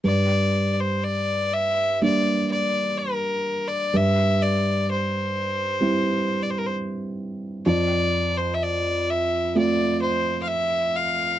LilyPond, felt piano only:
\new Staff \with { instrumentName = "Felt piano" } { \time 4/4 \key g \dorian \tempo 4 = 63 g,2 <g bes d'>2 | g,2 <g c' e'>2 | f,2 <a c' f'>2 | }